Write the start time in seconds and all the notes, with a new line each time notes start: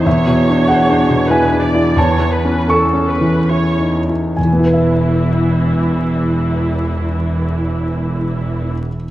0.06 E1 E2 C#5 E5
0.26 B2
0.49 D4
0.68 G#4 F#5
0.90 D4
1.10 B2
1.28 E4 B4 G#5
1.51 D4
1.61 D5
1.75 E4
1.96 E2 C#5 A5
2.19 E3
2.31 B4
2.44 C#4
2.68 A4 C#6
2.93 C#4
3.08 B4
3.21 E3
3.50 E4 C#5
3.80 D#4
4.09 E4
4.36 E1 E2 E3 E4 G#5
4.45 E3
4.53 B3
4.59 E4
4.66 B4
4.73 E5